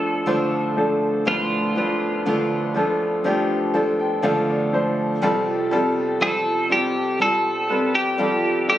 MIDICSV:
0, 0, Header, 1, 4, 480
1, 0, Start_track
1, 0, Tempo, 990099
1, 612, Time_signature, 4, 2, 24, 8
1, 4257, End_track
2, 0, Start_track
2, 0, Title_t, "Clean electric guitar"
2, 0, Program_c, 0, 27
2, 0, Note_on_c, 0, 69, 74
2, 600, Note_off_c, 0, 69, 0
2, 620, Note_on_c, 0, 65, 55
2, 1079, Note_off_c, 0, 65, 0
2, 3018, Note_on_c, 0, 69, 80
2, 3236, Note_off_c, 0, 69, 0
2, 3259, Note_on_c, 0, 67, 78
2, 3497, Note_off_c, 0, 67, 0
2, 3499, Note_on_c, 0, 69, 83
2, 3853, Note_off_c, 0, 69, 0
2, 3855, Note_on_c, 0, 67, 74
2, 4210, Note_off_c, 0, 67, 0
2, 4216, Note_on_c, 0, 67, 70
2, 4257, Note_off_c, 0, 67, 0
2, 4257, End_track
3, 0, Start_track
3, 0, Title_t, "Steel-string acoustic guitar"
3, 0, Program_c, 1, 25
3, 0, Note_on_c, 1, 62, 33
3, 0, Note_on_c, 1, 65, 37
3, 0, Note_on_c, 1, 69, 39
3, 123, Note_off_c, 1, 62, 0
3, 126, Note_off_c, 1, 65, 0
3, 126, Note_on_c, 1, 50, 59
3, 127, Note_off_c, 1, 69, 0
3, 127, Note_on_c, 1, 57, 59
3, 129, Note_on_c, 1, 62, 61
3, 132, Note_on_c, 1, 65, 61
3, 133, Note_on_c, 1, 69, 61
3, 602, Note_off_c, 1, 50, 0
3, 607, Note_off_c, 1, 62, 0
3, 607, Note_on_c, 1, 50, 59
3, 609, Note_off_c, 1, 57, 0
3, 611, Note_on_c, 1, 57, 60
3, 613, Note_off_c, 1, 65, 0
3, 613, Note_off_c, 1, 69, 0
3, 613, Note_on_c, 1, 62, 56
3, 615, Note_on_c, 1, 65, 64
3, 615, Note_on_c, 1, 69, 65
3, 844, Note_off_c, 1, 69, 0
3, 849, Note_off_c, 1, 65, 0
3, 850, Note_on_c, 1, 69, 39
3, 851, Note_off_c, 1, 50, 0
3, 853, Note_off_c, 1, 57, 0
3, 854, Note_off_c, 1, 62, 0
3, 855, Note_on_c, 1, 65, 39
3, 860, Note_on_c, 1, 62, 36
3, 1091, Note_off_c, 1, 62, 0
3, 1093, Note_off_c, 1, 65, 0
3, 1093, Note_off_c, 1, 69, 0
3, 1094, Note_on_c, 1, 50, 53
3, 1096, Note_on_c, 1, 57, 67
3, 1097, Note_on_c, 1, 62, 62
3, 1098, Note_on_c, 1, 65, 65
3, 1101, Note_on_c, 1, 69, 61
3, 1324, Note_off_c, 1, 69, 0
3, 1330, Note_off_c, 1, 65, 0
3, 1330, Note_on_c, 1, 69, 41
3, 1335, Note_off_c, 1, 50, 0
3, 1335, Note_off_c, 1, 62, 0
3, 1336, Note_off_c, 1, 57, 0
3, 1336, Note_on_c, 1, 65, 42
3, 1341, Note_on_c, 1, 62, 34
3, 1568, Note_off_c, 1, 62, 0
3, 1572, Note_off_c, 1, 69, 0
3, 1572, Note_on_c, 1, 57, 53
3, 1573, Note_off_c, 1, 65, 0
3, 1574, Note_on_c, 1, 62, 50
3, 1578, Note_on_c, 1, 65, 55
3, 1581, Note_on_c, 1, 69, 55
3, 1806, Note_off_c, 1, 69, 0
3, 1811, Note_off_c, 1, 65, 0
3, 1812, Note_off_c, 1, 57, 0
3, 1812, Note_on_c, 1, 69, 49
3, 1813, Note_off_c, 1, 62, 0
3, 1817, Note_on_c, 1, 65, 43
3, 1822, Note_on_c, 1, 62, 40
3, 2046, Note_off_c, 1, 62, 0
3, 2048, Note_off_c, 1, 65, 0
3, 2048, Note_on_c, 1, 50, 71
3, 2050, Note_off_c, 1, 69, 0
3, 2051, Note_on_c, 1, 57, 68
3, 2051, Note_on_c, 1, 62, 75
3, 2053, Note_on_c, 1, 65, 73
3, 2056, Note_on_c, 1, 69, 67
3, 2527, Note_off_c, 1, 50, 0
3, 2528, Note_off_c, 1, 57, 0
3, 2529, Note_on_c, 1, 53, 71
3, 2530, Note_off_c, 1, 62, 0
3, 2530, Note_on_c, 1, 55, 68
3, 2532, Note_off_c, 1, 65, 0
3, 2532, Note_on_c, 1, 60, 67
3, 2534, Note_off_c, 1, 69, 0
3, 2534, Note_on_c, 1, 65, 70
3, 2536, Note_on_c, 1, 69, 78
3, 2763, Note_off_c, 1, 69, 0
3, 2769, Note_off_c, 1, 65, 0
3, 2769, Note_on_c, 1, 69, 51
3, 2770, Note_off_c, 1, 53, 0
3, 2771, Note_off_c, 1, 55, 0
3, 2772, Note_off_c, 1, 60, 0
3, 2774, Note_on_c, 1, 65, 41
3, 2779, Note_on_c, 1, 60, 41
3, 3006, Note_off_c, 1, 60, 0
3, 3007, Note_off_c, 1, 65, 0
3, 3007, Note_on_c, 1, 53, 58
3, 3009, Note_off_c, 1, 69, 0
3, 3010, Note_on_c, 1, 55, 65
3, 3012, Note_on_c, 1, 60, 62
3, 3013, Note_on_c, 1, 65, 60
3, 3014, Note_on_c, 1, 69, 64
3, 3239, Note_off_c, 1, 69, 0
3, 3244, Note_on_c, 1, 69, 44
3, 3245, Note_off_c, 1, 65, 0
3, 3247, Note_off_c, 1, 53, 0
3, 3249, Note_off_c, 1, 55, 0
3, 3250, Note_off_c, 1, 60, 0
3, 3251, Note_on_c, 1, 65, 34
3, 3255, Note_on_c, 1, 60, 30
3, 3484, Note_off_c, 1, 60, 0
3, 3486, Note_off_c, 1, 69, 0
3, 3486, Note_on_c, 1, 55, 43
3, 3488, Note_off_c, 1, 65, 0
3, 3490, Note_on_c, 1, 60, 48
3, 3493, Note_on_c, 1, 65, 52
3, 3497, Note_on_c, 1, 69, 53
3, 3719, Note_off_c, 1, 69, 0
3, 3725, Note_on_c, 1, 69, 43
3, 3727, Note_off_c, 1, 55, 0
3, 3727, Note_off_c, 1, 65, 0
3, 3729, Note_off_c, 1, 60, 0
3, 3732, Note_on_c, 1, 65, 37
3, 3738, Note_on_c, 1, 60, 33
3, 3963, Note_off_c, 1, 60, 0
3, 3964, Note_off_c, 1, 65, 0
3, 3964, Note_on_c, 1, 53, 58
3, 3966, Note_off_c, 1, 69, 0
3, 3966, Note_on_c, 1, 55, 64
3, 3969, Note_on_c, 1, 60, 63
3, 3970, Note_on_c, 1, 65, 66
3, 3973, Note_on_c, 1, 69, 71
3, 4257, Note_off_c, 1, 53, 0
3, 4257, Note_off_c, 1, 55, 0
3, 4257, Note_off_c, 1, 60, 0
3, 4257, Note_off_c, 1, 65, 0
3, 4257, Note_off_c, 1, 69, 0
3, 4257, End_track
4, 0, Start_track
4, 0, Title_t, "Upright piano"
4, 0, Program_c, 2, 0
4, 0, Control_c, 2, 64, 127
4, 0, Note_on_c, 2, 38, 50
4, 0, Note_on_c, 2, 45, 54
4, 0, Note_on_c, 2, 53, 51
4, 0, Note_on_c, 2, 62, 45
4, 0, Note_on_c, 2, 69, 57
4, 115, Note_off_c, 2, 53, 0
4, 116, Note_off_c, 2, 62, 0
4, 118, Note_off_c, 2, 69, 0
4, 128, Note_on_c, 2, 53, 62
4, 131, Note_on_c, 2, 62, 62
4, 133, Note_on_c, 2, 72, 73
4, 359, Note_off_c, 2, 53, 0
4, 360, Note_off_c, 2, 62, 0
4, 361, Note_off_c, 2, 72, 0
4, 371, Note_on_c, 2, 53, 62
4, 373, Note_on_c, 2, 62, 59
4, 378, Note_on_c, 2, 69, 71
4, 591, Note_off_c, 2, 38, 0
4, 591, Note_off_c, 2, 45, 0
4, 600, Note_off_c, 2, 53, 0
4, 602, Note_off_c, 2, 62, 0
4, 604, Note_off_c, 2, 69, 0
4, 613, Note_on_c, 2, 53, 73
4, 614, Note_on_c, 2, 62, 63
4, 615, Note_on_c, 2, 38, 49
4, 615, Note_on_c, 2, 45, 48
4, 618, Note_on_c, 2, 71, 78
4, 842, Note_off_c, 2, 53, 0
4, 842, Note_off_c, 2, 62, 0
4, 844, Note_off_c, 2, 71, 0
4, 854, Note_on_c, 2, 53, 65
4, 856, Note_on_c, 2, 62, 60
4, 860, Note_on_c, 2, 71, 69
4, 1083, Note_off_c, 2, 53, 0
4, 1084, Note_off_c, 2, 62, 0
4, 1086, Note_off_c, 2, 71, 0
4, 1094, Note_on_c, 2, 53, 52
4, 1097, Note_on_c, 2, 62, 52
4, 1101, Note_on_c, 2, 69, 61
4, 1323, Note_off_c, 2, 53, 0
4, 1325, Note_off_c, 2, 62, 0
4, 1327, Note_off_c, 2, 69, 0
4, 1337, Note_on_c, 2, 53, 66
4, 1339, Note_on_c, 2, 62, 61
4, 1342, Note_on_c, 2, 69, 71
4, 1564, Note_off_c, 2, 53, 0
4, 1564, Note_off_c, 2, 62, 0
4, 1566, Note_off_c, 2, 69, 0
4, 1575, Note_on_c, 2, 53, 65
4, 1577, Note_on_c, 2, 62, 56
4, 1580, Note_on_c, 2, 67, 68
4, 1802, Note_off_c, 2, 53, 0
4, 1803, Note_off_c, 2, 62, 0
4, 1804, Note_off_c, 2, 67, 0
4, 1814, Note_on_c, 2, 53, 62
4, 1815, Note_on_c, 2, 81, 51
4, 1816, Note_on_c, 2, 62, 57
4, 1817, Note_on_c, 2, 69, 70
4, 1925, Note_off_c, 2, 81, 0
4, 1937, Note_on_c, 2, 79, 52
4, 2041, Note_off_c, 2, 53, 0
4, 2042, Note_off_c, 2, 62, 0
4, 2043, Note_off_c, 2, 69, 0
4, 2047, Note_off_c, 2, 79, 0
4, 2051, Note_on_c, 2, 53, 81
4, 2054, Note_on_c, 2, 62, 73
4, 2055, Note_on_c, 2, 77, 52
4, 2057, Note_on_c, 2, 69, 89
4, 2165, Note_off_c, 2, 77, 0
4, 2174, Note_on_c, 2, 74, 52
4, 2279, Note_off_c, 2, 53, 0
4, 2281, Note_off_c, 2, 62, 0
4, 2282, Note_off_c, 2, 69, 0
4, 2293, Note_on_c, 2, 53, 66
4, 2297, Note_on_c, 2, 62, 64
4, 2298, Note_on_c, 2, 72, 70
4, 2514, Note_off_c, 2, 38, 0
4, 2514, Note_off_c, 2, 45, 0
4, 2514, Note_off_c, 2, 74, 0
4, 2520, Note_off_c, 2, 53, 0
4, 2522, Note_off_c, 2, 62, 0
4, 2523, Note_off_c, 2, 72, 0
4, 2532, Note_on_c, 2, 55, 82
4, 2533, Note_on_c, 2, 41, 57
4, 2534, Note_on_c, 2, 48, 55
4, 2535, Note_on_c, 2, 65, 77
4, 2537, Note_on_c, 2, 69, 95
4, 2539, Control_c, 2, 64, 0
4, 2615, Control_c, 2, 64, 127
4, 2760, Note_off_c, 2, 55, 0
4, 2761, Note_off_c, 2, 65, 0
4, 2762, Note_off_c, 2, 69, 0
4, 2770, Note_on_c, 2, 55, 82
4, 2774, Note_on_c, 2, 65, 75
4, 2776, Note_on_c, 2, 69, 95
4, 2997, Note_off_c, 2, 55, 0
4, 3000, Note_off_c, 2, 65, 0
4, 3001, Note_off_c, 2, 69, 0
4, 3009, Note_on_c, 2, 55, 61
4, 3013, Note_on_c, 2, 65, 53
4, 3014, Note_on_c, 2, 72, 61
4, 3236, Note_off_c, 2, 55, 0
4, 3238, Note_off_c, 2, 65, 0
4, 3239, Note_off_c, 2, 72, 0
4, 3247, Note_on_c, 2, 55, 56
4, 3248, Note_on_c, 2, 65, 52
4, 3251, Note_on_c, 2, 67, 64
4, 3475, Note_off_c, 2, 55, 0
4, 3476, Note_off_c, 2, 65, 0
4, 3478, Note_off_c, 2, 67, 0
4, 3491, Note_on_c, 2, 55, 55
4, 3493, Note_on_c, 2, 65, 50
4, 3496, Note_on_c, 2, 69, 62
4, 3717, Note_off_c, 2, 55, 0
4, 3718, Note_off_c, 2, 65, 0
4, 3720, Note_off_c, 2, 69, 0
4, 3728, Note_on_c, 2, 55, 57
4, 3730, Note_on_c, 2, 65, 52
4, 3734, Note_on_c, 2, 71, 60
4, 3955, Note_off_c, 2, 55, 0
4, 3956, Note_off_c, 2, 65, 0
4, 3958, Note_off_c, 2, 71, 0
4, 3966, Note_on_c, 2, 55, 70
4, 3970, Note_on_c, 2, 65, 64
4, 3972, Note_on_c, 2, 69, 82
4, 4194, Note_off_c, 2, 55, 0
4, 4196, Note_off_c, 2, 65, 0
4, 4197, Note_off_c, 2, 69, 0
4, 4206, Note_on_c, 2, 55, 58
4, 4210, Note_on_c, 2, 65, 49
4, 4212, Note_on_c, 2, 69, 62
4, 4257, Note_off_c, 2, 41, 0
4, 4257, Note_off_c, 2, 48, 0
4, 4257, Note_off_c, 2, 55, 0
4, 4257, Note_off_c, 2, 65, 0
4, 4257, Note_off_c, 2, 69, 0
4, 4257, End_track
0, 0, End_of_file